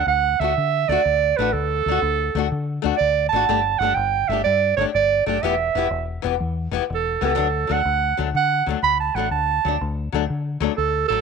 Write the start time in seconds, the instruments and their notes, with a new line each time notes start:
0.07 fingered electric bass D2, clarinet F#5
0.40 fingered electric bass D2, steel-string acoustic guitar A3 D4 F#4, clarinet E5
0.57 fingered electric bass D3
0.89 fingered electric bass D2, steel-string acoustic guitar A3 D4 F#4, clarinet D5
1.05 fingered electric bass D2
1.37 fingered electric bass A1, steel-string acoustic guitar A3 D4, clarinet B4
1.42 steel-string acoustic guitar F#4
1.53 fingered electric bass D2, clarinet A4
1.86 fingered electric bass D2, steel-string acoustic guitar A3 D4
1.91 steel-string acoustic guitar F#4
2.02 fingered electric bass D2
2.35 fingered electric bass D2, steel-string acoustic guitar A3 D4 F#4
2.52 fingered electric bass D3
2.82 fingered electric bass D2, steel-string acoustic guitar A3 D4 F#4
2.97 fingered electric bass D2, clarinet D5
3.29 clarinet A5
3.33 fingered electric bass G#1, steel-string acoustic guitar A3 D4 F#4
3.49 fingered electric bass G1, steel-string acoustic guitar A3 D4 G4
3.79 fingered electric bass G1, steel-string acoustic guitar A3, clarinet F#5
3.83 steel-string acoustic guitar D4 G4
3.95 fingered electric bass G1, clarinet G5
4.28 fingered electric bass G1, steel-string acoustic guitar A3 D4, clarinet E5
4.33 steel-string acoustic guitar G4
4.44 fingered electric bass G2, clarinet D5
4.77 fingered electric bass G1, steel-string acoustic guitar A3 D4, clarinet C#5
4.81 steel-string acoustic guitar G4
4.94 fingered electric bass G1, clarinet D5
5.26 fingered electric bass F#1, steel-string acoustic guitar A3 D4 G4, clarinet D5
5.43 fingered electric bass E1, steel-string acoustic guitar E3 B3 E4 G4, clarinet E5
5.75 fingered electric bass E1, steel-string acoustic guitar E3 B3 E4 G4
5.90 fingered electric bass E1
6.22 fingered electric bass E1, steel-string acoustic guitar E3 B3 G4
6.40 fingered electric bass E2
6.71 fingered electric bass E1, steel-string acoustic guitar E3 B3 E4 G4
6.90 fingered electric bass E1
6.94 clarinet A4
7.21 fingered electric bass C#2, steel-string acoustic guitar E3 B3 E4 G4
7.25 clarinet A4
7.35 fingered electric bass D2, steel-string acoustic guitar F#3 D4, muted steel-string acoustic guitar stroke
7.67 fingered electric bass D2, steel-string acoustic guitar F#3 A3 D4
7.72 clarinet F#5
7.85 fingered electric bass D2
8.17 fingered electric bass D2, steel-string acoustic guitar F#3 A3 D4
8.34 fingered electric bass D3, clarinet F#5
8.66 fingered electric bass D2, steel-string acoustic guitar F#3 A3
8.70 steel-string acoustic guitar D4
8.83 fingered electric bass D2, clarinet B5
9.00 clarinet A5
9.15 fingered electric bass A1, steel-string acoustic guitar F#3 A3, clarinet F#5
9.19 steel-string acoustic guitar D4
9.31 fingered electric bass D2, clarinet A5
9.65 fingered electric bass D2, steel-string acoustic guitar F#3 A3 D4
9.81 fingered electric bass D2
10.12 fingered electric bass D2, steel-string acoustic guitar F#3 A3 D4
10.30 fingered electric bass D3
10.60 fingered electric bass D2, steel-string acoustic guitar F#3 A3 D4
10.77 fingered electric bass D2, clarinet A4
11.08 fingered electric bass A1, steel-string acoustic guitar F#3, clarinet A4
11.12 steel-string acoustic guitar A3